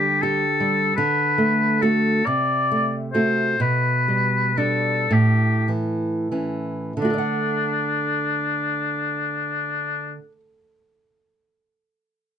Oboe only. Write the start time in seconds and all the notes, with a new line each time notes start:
Already playing: G4
0.22 A4
0.96 B4
1.82 A4
2.26 D5
3.13 C5
3.61 B4
4.58 A4
5.13 G4
6.98 D4